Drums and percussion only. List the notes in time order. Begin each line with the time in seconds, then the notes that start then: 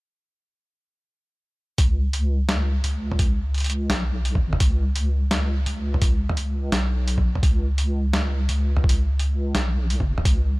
1.78 kick, closed hi-hat
2.13 closed hi-hat
2.49 snare, closed hi-hat
2.84 closed hi-hat
3.12 mid tom
3.19 kick, closed hi-hat
3.54 closed hi-hat
3.58 closed hi-hat
3.60 closed hi-hat
3.64 closed hi-hat
3.66 closed hi-hat
3.70 closed hi-hat
3.90 snare, closed hi-hat
4.25 closed hi-hat
4.35 kick, mid tom
4.53 mid tom
4.60 kick, closed hi-hat
4.96 closed hi-hat
5.31 snare, closed hi-hat
5.66 closed hi-hat
5.94 mid tom
6.02 kick, closed hi-hat
6.29 mid tom
6.37 closed hi-hat
6.72 snare, closed hi-hat
7.08 closed hi-hat
7.18 kick, mid tom
7.35 mid tom
7.43 kick, closed hi-hat
7.78 closed hi-hat
8.13 snare, closed hi-hat
8.49 closed hi-hat
8.77 mid tom
8.84 kick
8.89 closed hi-hat
9.19 closed hi-hat
9.55 snare, closed hi-hat
9.90 closed hi-hat
10.00 kick, mid tom
10.18 mid tom
10.25 kick, closed hi-hat